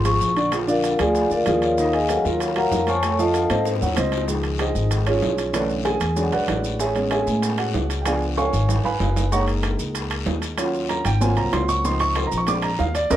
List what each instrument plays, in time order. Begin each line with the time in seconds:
Already playing: upright bass G#1
0.05 grand piano F3 F4 G#4, vibraphone C#6, high bongo, high timbale, maracas
0.20 upright bass A#1, high bongo, low bongo, short guiro, maracas
0.36 grand piano D3 D4 D5, high timbale, short guiro, maracas
0.52 grand piano F3 F4 G#4, high bongo, high timbale, long guiro, maracas
0.68 grand piano D3 D4 D5, vibraphone F4 A#4 D5 F5, maracas
0.84 high bongo, high timbale, short guiro, maracas
0.99 upright bass D2, grand piano F3 F4 G#4, vibraphone G#4 D5 F5 G#5, high bongo, high timbale, short guiro, maracas
1.15 high bongo, long guiro, maracas
1.30 upright bass D2, grand piano D3 D4 D5, vibraphone F4 A#4 D5 F5, high bongo, maracas
1.46 upright bass D#2, grand piano F3 F4 G#4, high bongo, low bongo, high timbale, low timbale, short guiro, maracas
1.62 vibraphone F4 A#4 C#5 F5, high timbale, short guiro, maracas
1.78 grand piano D#3 D#4 D#5, high bongo, long guiro, maracas
1.93 vibraphone G#4 D#5 F5 G#5, high bongo, high timbale
2.09 grand piano F#3 F#4 A#4, high bongo, high timbale, short guiro, maracas
2.25 upright bass D#2, grand piano F#3 F4 A#4, vibraphone F4 A#4 C#5 F5, high bongo, short guiro, maracas
2.40 high bongo, high timbale, long guiro, maracas
2.56 grand piano F#3 F#4 A#4, vibraphone A#4 F5 F#5 A#5, high bongo, high timbale
2.71 upright bass F2, high bongo, low bongo, low timbale, short guiro, maracas
2.87 grand piano F3 F4 F5, vibraphone C#5 G#5 A5 C#6, high timbale, short guiro, maracas
3.03 grand piano A3 A4 C#5, high bongo, high timbale, long guiro, maracas
3.19 grand piano F3 F4 F5, vibraphone A4 D#5 F5 A5, high bongo, maracas
3.34 high bongo, high timbale, short guiro, maracas
3.50 upright bass G#2, grand piano C4 C5 D#5, high timbale, short guiro, maracas
3.65 high bongo, long guiro, maracas
3.76 high bongo
3.81 upright bass D#2, grand piano F#3 F#4 F#5, maracas
3.87 low bongo
3.97 upright bass C#2, grand piano C4 C5 D#5, high timbale, low timbale, short guiro, maracas
4.07 low bongo
4.12 high timbale, short guiro, maracas
4.18 low bongo
4.28 grand piano D#3 F3 G#3, high bongo, long guiro, maracas
4.43 high bongo, high timbale, maracas
4.59 grand piano D#4 G#4 C5 D#5, high bongo, high timbale, low timbale, short guiro, maracas
4.75 upright bass G#1, high bongo, short guiro, maracas
4.91 high bongo, high timbale, long guiro, maracas
5.07 grand piano C#4 F4 G#4 C#5, high bongo, high timbale, maracas
5.22 upright bass B1, high bongo, low bongo, low timbale, short guiro, maracas
5.38 high timbale, short guiro, maracas
5.53 grand piano D3 E3 A3 C#4 D4 A4 B4 D5, high bongo, high timbale, long guiro, maracas
5.69 high bongo, maracas
5.85 grand piano G#4 G#5, high bongo, high timbale, low timbale, short guiro, maracas
6.00 upright bass E2, high timbale, short guiro, maracas
6.16 grand piano F#3 G#3 D4, high bongo, long guiro, maracas
6.32 upright bass A#1, grand piano F#4 B4 D5 F#5, high bongo, high timbale, maracas
6.48 upright bass A1, high bongo, low bongo, high timbale, low timbale, short guiro, maracas
6.64 short guiro, maracas
6.80 grand piano G#4 C#5 E5 G#5, high bongo, long guiro, maracas
6.95 grand piano G#3 B3 C#4, high bongo, high timbale, maracas
7.11 grand piano G#4 C#5 E5 G#5, high bongo, high timbale, low timbale, short guiro, maracas
7.27 upright bass A2, high bongo, short guiro, maracas
7.42 high bongo, high timbale, long guiro, maracas
7.58 grand piano F#4 F#5, high bongo, high timbale, maracas
7.74 upright bass C#2, high bongo, low bongo, low timbale, short guiro, maracas
7.90 high timbale, short guiro, maracas
8.02 grand piano F3 G5, high bongo, high timbale
8.06 grand piano B3 D4 G#4 D5 F5 G#5, long guiro, maracas
8.22 high bongo, maracas
8.37 grand piano C#5 F5 G#5 C#6, high bongo, high timbale, short guiro, maracas
8.53 upright bass G#1, high bongo, short guiro, maracas
8.69 high bongo, low timbale, long guiro, maracas
8.84 upright bass G#1, grand piano B4 F5 G#5 B5, high bongo, low timbale, maracas
9.00 upright bass F#1, high bongo, low bongo, low timbale, short guiro, maracas
9.16 low timbale, short guiro, maracas
9.32 grand piano G#3 A#3 D#4 C#5 F#5 A#5 C#6, high bongo, long guiro, maracas
9.48 high bongo, high timbale, maracas
9.63 high bongo, high timbale, low timbale, short guiro, maracas
9.79 upright bass C#2, high bongo, short guiro, maracas
9.95 high bongo, high timbale, long guiro, maracas
10.11 high bongo, high timbale, maracas
10.26 upright bass D#2, high bongo, low bongo, low timbale, short guiro, maracas
10.42 high timbale, short guiro, maracas
10.57 grand piano F#3 C#4 F4, high bongo, high timbale, long guiro, maracas
10.74 high bongo, maracas
10.89 grand piano A#5, high bongo, high timbale, low timbale, short guiro, maracas
11.05 upright bass G#1, grand piano G5, high bongo, high timbale, short guiro, maracas
11.21 grand piano F#3 A#3 C4 F4 G#5, high bongo, long guiro, maracas
11.37 upright bass C2, grand piano A#5, high bongo, high timbale, maracas
11.53 upright bass C#2, grand piano C6, high bongo, low bongo, high timbale, low timbale, short guiro, maracas
11.69 grand piano C#6, short guiro, maracas
11.84 grand piano F3 C4 D#4 C6, high bongo, long guiro, maracas
12.00 grand piano C#6, high bongo, high timbale, maracas
12.16 grand piano C6, high bongo, high timbale, low timbale, short guiro, maracas
12.27 grand piano A#5
12.32 upright bass A#1, high bongo, short guiro, maracas
12.38 grand piano C#6
12.47 grand piano G#3 C4 D4 D6, high bongo, high timbale, long guiro, maracas
12.62 grand piano A#5, high bongo, high timbale, maracas
12.79 upright bass D#2, grand piano F5, high bongo, low bongo, low timbale, short guiro, maracas
12.95 grand piano D5, high timbale, short guiro, maracas
13.10 upright bass D#2, grand piano A#4 C#5 D#5, low bongo, high timbale, long guiro, maracas